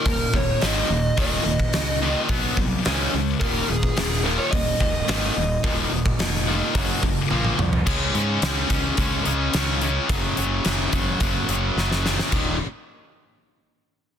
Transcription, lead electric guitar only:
0.07 A#4
0.35 C#5
0.63 D#5
1.20 D#5
3.40 A#4
3.68 G#4
4.24 A#4
4.38 C#5
4.51 D#5

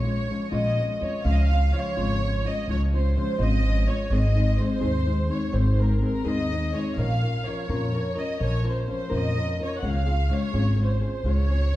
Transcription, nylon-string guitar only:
0.04 G#3 C#4 F4
0.30 F3 G#3 C#4 F4
0.52 A#2 F3 G#3 C#4 F4
0.78 F3 G#3 C#4 F4
1.00 G#3 C#4 F4
1.24 C#3 F3 G#3 C#4 F4
1.51 G#3 C#4 F4
1.73 F3 G#3 C#4 F4
1.97 C#3 F3 G#3 C#4 F4
2.22 F3 G#3 C#4 F4
2.45 G#3 C#4 F4
2.68 C#3 F3 G#3 C#4 F4
2.94 G#3 C#4 F4
3.16 F3 G#3 C#4 F4
3.39 C#3 F3 G#3 C#4 F4
3.65 F3 G#3 C#4 F4
3.88 G#3 C#4 F4
4.11 G#2 D#3 G#3 C4 D#4 G#4
4.36 G#3 C4 D#4 G#4
4.58 G#3 C4 D#4 G#4
4.81 G#2 D#3 G#3 C4 D#4 G#4
5.06 G#3 C4 D#4 G#4
5.28 G#3 C4 D#4 G#4
5.51 G#2 D#3 G#3 C4 D#4 G#4
5.79 G#3 C4 D#4 G#4
6.00 G#3 C4 D#4 G#4
6.24 G#2 D#3 G#3 C4 D#4 G#4
6.50 G#3 C4 D#4 G#4
6.73 G#3 C4 D#4 G#4
6.97 A#2 F3 C#4 F4 A#4
7.23 C#4 F4 A#4
7.46 F3 C#4 F4 A#4
7.69 A#2 F3 C#4 F4 A#4
7.93 F3 C#4 F4 A#4
8.15 C#4 F4 A#4
8.39 A#2 F3 C#4 F4 A#4
8.64 C#4 F4 A#4
8.87 F3 C#4 F4 A#4
9.09 A#2 F3 C#4 F4 A#4
9.35 F3 C#4 F4 A#4
9.59 C#4 F4 A#4
9.82 C#3 G#3 C#4 F4 G#4
10.06 C#4 F4 G#4
10.30 G#3 C#4 F4 G#4
10.53 C#3 G#3 C#4 F4 G#4
10.78 G#3 C#4 F4 G#4
11.01 C#4 F4 G#4
11.24 C#3 G#3 C#4 F4 G#4
11.49 C#4 F4 G#4

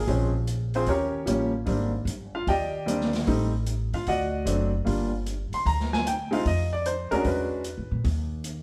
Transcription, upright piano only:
Already playing: G#4
0.07 F3 G#3 C4 C#4
0.75 C4 F4 G#4 C5
0.88 C#4 G4 A#4 C#5
1.26 F3 G3 A#3 C#4
1.66 G3 A#3 C4 D4
2.35 F4 F5
2.48 G4 D5 D#5 G5
2.86 G3 A#3 C4 D4
3.26 G3 A3 C4 D#4
3.94 F4 F5
4.08 F#4 D5 D#5 F#5
4.45 F#3 A3 C4 D4
4.85 G3 A#3 D4 F4
5.54 C6
5.66 A#5
5.93 G#5
6.07 G5
6.31 G#3 C4 D#4 F4 F5
6.47 D#5
6.73 D5
6.86 C5
7.11 G#3 C#4 D4 F#4 A#4
7.27 B4

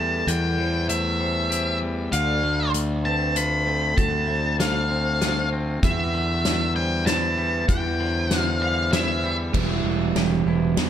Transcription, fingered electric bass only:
Already playing: E2
0.27 E2
2.13 D2
3.98 D2
5.83 E2
7.68 E2
9.54 E1
9.84 E1
10.16 E1
10.46 E1
10.77 E2

